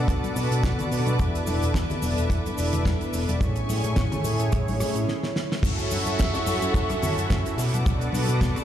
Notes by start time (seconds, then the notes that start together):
Already playing: B3 D4 F#4 A4 B4 D5 F#5 A5 D6
0.08 B1, kick, cross-stick, closed hi-hat, shaker
0.24 closed hi-hat, high conga, shaker
0.36 B2, open hi-hat, high bongo, shaker
0.51 B2, closed hi-hat, shaker
0.63 B1, kick, snare, closed hi-hat, high conga, shaker
0.79 closed hi-hat, low conga, shaker
0.91 B2 B3 D4 F#4 A4 D5, open hi-hat, shaker
1.06 B2, closed hi-hat, high conga, shaker
1.18 E2 B3 D4 E4 A4 D5 E5, kick, closed hi-hat, shaker
1.35 closed hi-hat, shaker
1.47 E1, open hi-hat, high conga, shaker
1.62 E1, closed hi-hat, shaker
1.74 E2, kick, snare, closed hi-hat, shaker
1.90 closed hi-hat, high bongo, low conga, shaker
2.01 E1 B3 D4 E4 A4 D5, open hi-hat, high conga, shaker
2.18 E1, closed hi-hat, shaker
2.30 E2, kick, cross-stick, closed hi-hat, shaker
2.46 closed hi-hat, high conga, shaker
2.58 E1, open hi-hat, shaker
2.73 E1, closed hi-hat, low conga, shaker
2.85 E2, kick, snare, closed hi-hat, high conga, shaker
3.01 closed hi-hat, shaker
3.13 E1, open hi-hat, high bongo, shaker
3.28 E1, closed hi-hat, high conga, shaker
3.40 A1 A3 C#4 E4 G#4 C#5 G#5 C#6, kick, closed hi-hat, shaker
3.56 closed hi-hat, shaker
3.69 A2, open hi-hat, high conga, shaker
3.84 A2, closed hi-hat, shaker
3.96 A1, kick, snare, closed hi-hat, shaker
4.12 closed hi-hat, high bongo, low conga, shaker
4.23 A2 A3 C#4 E4 G#4 C#5, open hi-hat, high conga, shaker
4.39 A2, closed hi-hat, shaker
4.52 A1, kick, cross-stick, closed hi-hat, shaker
4.68 open hi-hat, high conga, shaker
4.80 A2, cross-stick, open hi-hat, high bongo, shaker
4.95 A2, closed hi-hat, shaker
5.08 snare
5.23 snare
5.36 snare
5.52 snare
5.62 F#1 C#4 E4 F#4 A4 E5 F#5 C#6, kick, closed hi-hat, crash, downlifter, shaker
5.79 closed hi-hat, shaker
5.91 F#2, open hi-hat, high conga, shaker
6.06 F#2, closed hi-hat, shaker
6.19 F#1, kick, snare, closed hi-hat, shaker
6.34 cross-stick, closed hi-hat, high bongo, shaker
6.46 F#2 C#4 E4 F#4 A4 E5, open hi-hat, high conga, shaker
6.62 F#2, closed hi-hat, shaker
6.74 F#1, kick, closed hi-hat, shaker
6.89 cross-stick, closed hi-hat, high conga, shaker
7.02 F#2, open hi-hat, low conga, shaker
7.18 F#2, closed hi-hat, shaker
7.30 F#1, kick, snare, closed hi-hat, high conga, shaker
7.46 closed hi-hat, shaker
7.58 B2 B4 F#5 A5 D6, open hi-hat, high bongo, shaker
7.73 B2, closed hi-hat, high conga, shaker
7.85 B1 B3 D4 F#4 A4 D5, kick, closed hi-hat, shaker
8.01 closed hi-hat, shaker
8.13 B2, open hi-hat, high conga, shaker
8.29 B2, closed hi-hat, shaker
8.41 B1, kick, snare, closed hi-hat, shaker
8.56 cross-stick, closed hi-hat, high bongo, shaker